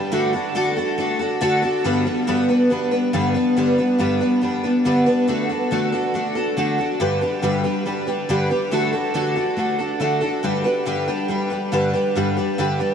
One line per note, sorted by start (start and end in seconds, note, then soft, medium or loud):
0.00 0.11 G3 medium
0.00 0.11 D4 medium
0.00 0.12 G4 medium
0.00 0.12 B4 medium
0.12 0.33 D3 medium
0.12 0.34 A3 medium
0.12 0.34 D4 medium
0.12 0.33 F#4 medium
0.12 0.32 A4 medium
0.33 0.54 D4 soft
0.33 0.55 F#4 medium
0.33 0.55 A4 medium
0.55 0.77 D3 medium
0.55 0.77 A3 medium
0.55 0.77 D4 medium
0.55 0.76 F#4 medium
0.55 0.75 A4 loud
0.76 0.98 D4 soft
0.76 0.99 F#4 medium
0.76 0.98 A4 medium
0.98 1.20 A3 medium
0.98 1.20 D4 medium
0.98 1.19 F#4 medium
0.98 1.18 A4 medium
1.19 1.40 D4 soft
1.19 1.41 F#4 medium
1.19 1.41 A4 medium
1.41 1.63 D3 medium
1.41 1.63 A3 medium
1.41 1.63 D4 medium
1.41 1.63 F#4 medium
1.41 1.61 A4 loud
1.62 1.84 D4 soft
1.62 1.85 F#4 medium
1.62 1.84 A4 medium
1.84 2.06 G2 medium
1.84 2.06 D3 medium
1.84 2.06 G3 medium
1.84 2.06 B3 medium
1.84 2.05 D4 medium
1.84 2.04 B4 medium
2.06 2.27 G3 soft
2.06 2.27 B3 medium
2.06 2.27 D4 medium
2.06 2.27 B4 medium
2.27 2.49 G2 medium
2.27 2.49 D3 medium
2.27 2.49 G3 medium
2.27 2.49 B3 loud
2.27 2.48 D4 medium
2.27 2.47 B4 medium
2.48 2.69 G3 soft
2.48 2.70 B3 medium
2.48 2.71 D4 medium
2.48 2.70 B4 medium
2.70 2.92 G3 medium
2.70 2.92 B3 medium
2.70 2.91 D4 medium
2.70 2.90 B4 medium
2.91 3.12 G3 soft
2.91 3.13 B3 soft
2.91 3.13 D4 medium
2.91 3.13 B4 medium
3.13 3.35 G2 medium
3.13 3.35 D3 medium
3.13 3.35 G3 medium
3.13 3.35 B3 medium
3.13 3.34 D4 medium
3.13 3.33 B4 medium
3.34 3.56 G3 soft
3.34 3.56 B3 medium
3.34 3.56 D4 medium
3.34 3.56 B4 medium
3.56 3.78 G2 medium
3.56 3.78 D3 medium
3.56 3.78 G3 medium
3.56 3.79 B3 medium
3.56 3.77 D4 medium
3.56 3.77 B4 medium
3.78 3.98 G3 soft
3.78 3.99 B3 soft
3.78 3.99 D4 soft
3.78 3.99 B4 medium
3.99 4.20 G2 medium
3.99 4.21 D3 medium
3.99 4.21 G3 medium
3.99 4.21 B3 medium
3.99 4.20 D4 medium
3.99 4.20 B4 medium
4.21 4.40 G3 soft
4.21 4.41 B3 medium
4.21 4.42 D4 soft
4.21 4.42 B4 medium
4.42 4.63 G3 medium
4.42 4.64 B3 medium
4.42 4.63 D4 medium
4.42 4.62 B4 medium
4.63 4.85 G3 soft
4.63 4.85 B3 medium
4.63 4.85 D4 medium
4.63 4.85 B4 medium
4.85 5.07 G2 medium
4.85 5.07 D3 medium
4.85 5.07 G3 medium
4.85 5.07 B3 medium
4.85 5.06 D4 medium
4.85 5.05 B4 medium
5.06 5.28 G3 medium
5.06 5.28 B3 medium
5.06 5.27 D4 medium
5.06 5.28 B4 medium
5.28 5.49 D3 medium
5.28 5.50 A3 medium
5.28 5.50 D4 medium
5.28 5.49 F#4 medium
5.28 5.48 A4 medium
5.49 5.71 D4 soft
5.49 5.71 F#4 medium
5.49 5.71 A4 medium
5.71 5.93 D3 medium
5.71 5.93 A3 medium
5.71 5.93 D4 medium
5.71 5.93 F#4 medium
5.71 5.91 A4 medium
5.92 6.14 D4 soft
5.92 6.15 F#4 medium
5.92 6.14 A4 medium
6.14 6.36 A3 medium
6.14 6.36 D4 medium
6.14 6.36 F#4 medium
6.14 6.34 A4 medium
6.35 6.57 D4 soft
6.35 6.57 F#4 medium
6.35 6.57 A4 medium
6.57 6.79 D3 medium
6.57 6.79 A3 medium
6.57 6.79 D4 medium
6.57 6.79 F#4 medium
6.57 6.77 A4 medium
6.78 7.00 D4 soft
6.78 7.01 F#4 medium
6.78 7.00 A4 medium
7.00 7.22 G2 medium
7.00 7.22 D3 medium
7.00 7.22 G3 medium
7.00 7.22 D4 medium
7.00 7.21 G4 medium
7.00 7.20 B4 medium
7.21 7.42 G3 soft
7.21 7.42 D4 medium
7.21 7.43 G4 medium
7.21 7.43 B4 medium
7.42 7.64 G2 medium
7.42 7.64 D3 medium
7.42 7.65 G3 medium
7.42 7.65 D4 medium
7.42 7.64 G4 medium
7.42 7.63 B4 medium
7.64 7.84 G3 soft
7.64 7.85 D4 soft
7.64 7.86 G4 medium
7.64 7.86 B4 medium
7.86 8.07 G3 medium
7.86 8.07 D4 medium
7.86 8.07 G4 medium
7.86 8.06 B4 medium
8.07 8.28 G3 soft
8.07 8.29 D4 medium
8.07 8.29 G4 medium
8.07 8.29 B4 medium
8.29 8.50 G2 medium
8.29 8.51 D3 medium
8.29 8.51 G3 medium
8.29 8.51 D4 medium
8.29 8.50 G4 medium
8.29 8.49 B4 medium
8.50 8.71 G3 soft
8.50 8.71 D4 soft
8.50 8.72 G4 medium
8.50 8.72 B4 medium
8.71 8.93 D3 medium
8.71 8.93 A3 medium
8.71 8.94 D4 medium
8.71 8.93 F#4 medium
8.71 8.91 A4 medium
8.93 9.14 D4 soft
8.93 9.14 F#4 medium
8.93 9.15 A4 medium
9.14 9.36 D3 medium
9.14 9.36 A3 medium
9.14 9.36 D4 medium
9.14 9.36 F#4 medium
9.14 9.34 A4 medium
9.36 9.56 D4 soft
9.36 9.57 F#4 soft
9.36 9.58 A4 medium
9.57 9.79 A3 medium
9.57 9.79 D4 medium
9.57 9.79 F#4 medium
9.57 9.77 A4 medium
9.79 10.00 D4 soft
9.79 10.00 F#4 medium
9.79 10.01 A4 medium
10.00 10.22 D3 medium
10.00 10.22 A3 medium
10.00 10.22 D4 medium
10.00 10.21 F#4 medium
10.00 10.20 A4 medium
10.21 10.43 D4 soft
10.21 10.44 F#4 soft
10.21 10.43 A4 medium
10.43 10.65 G2 medium
10.43 10.65 D3 medium
10.43 10.65 G3 medium
10.43 10.65 D4 medium
10.43 10.64 G4 medium
10.43 10.63 B4 medium
10.64 10.85 G3 soft
10.64 10.86 D4 medium
10.64 10.86 G4 soft
10.64 10.86 B4 medium
10.86 11.08 G2 medium
10.86 11.08 D3 medium
10.86 11.08 G3 medium
10.86 11.08 D4 medium
10.86 11.07 G4 medium
10.86 11.06 B4 medium
11.08 11.27 G3 medium
11.08 11.28 D4 medium
11.08 11.29 G4 soft
11.08 11.29 B4 medium
11.28 11.51 G3 medium
11.28 11.51 D4 medium
11.28 11.50 G4 medium
11.28 11.49 B4 medium
11.50 11.71 G3 soft
11.50 11.72 D4 soft
11.50 11.72 G4 soft
11.50 11.72 B4 medium
11.72 11.94 G2 medium
11.72 11.94 D3 medium
11.72 11.94 G3 medium
11.72 11.94 D4 medium
11.72 11.93 G4 medium
11.72 11.92 B4 medium
11.93 12.15 G3 soft
11.93 12.16 D4 soft
11.93 12.16 G4 medium
11.93 12.15 B4 medium
12.15 12.37 G2 medium
12.15 12.37 D3 medium
12.15 12.37 G3 medium
12.15 12.37 D4 medium
12.15 12.37 G4 medium
12.15 12.35 B4 medium
12.37 12.58 G3 soft
12.37 12.58 D4 medium
12.37 12.58 G4 medium
12.37 12.58 B4 medium
12.58 12.80 G2 medium
12.58 12.80 D3 medium
12.58 12.80 G3 medium
12.58 12.80 D4 medium
12.58 12.79 G4 medium
12.58 12.78 B4 medium
12.79 12.94 G3 soft
12.79 12.94 D4 medium
12.79 12.94 G4 medium
12.79 12.94 B4 medium